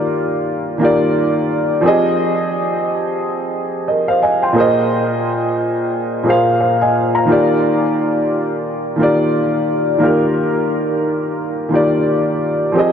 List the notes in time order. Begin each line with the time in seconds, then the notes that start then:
Already playing: D#3 A#3 F4 G4 A#4 D5
0.78 D#3 A#3 F4
0.83 G4 D5
1.81 F3 C4 G4
1.86 G#4 D#5
3.88 A#4 D#5
4.08 C5 F5
4.22 D#5 G#5
4.42 G5 C6
4.53 A#2 A#3 G#4
4.58 C5 D#5
6.23 A#2 A#3 G#4
6.28 C5 F5
6.61 C5 F5
6.81 D#5 G#5
7.15 F5 A#5
7.25 D#3 A#3 F4
7.30 G4 D5
8.96 D#3 A#3 F4
9.01 G4 D5
9.98 D#3 A#3 F4
10.03 G4 A#4
11.69 D#3 A#3 F4
11.74 G4 D5
12.72 F3 C4 G4
12.77 G#4 D#5